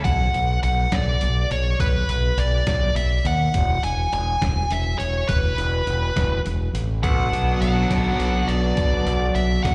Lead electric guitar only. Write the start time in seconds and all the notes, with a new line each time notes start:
0.04 F#5
0.64 F#5
0.92 D5
1.51 C#5
1.80 B4
2.38 D5
2.96 E5
3.26 F#5
3.84 G#5
4.14 G#5
4.72 E5
4.98 C#5
5.28 B4
7.03 F#5
7.62 F#5
8.48 D5
9.35 E5
9.63 F#5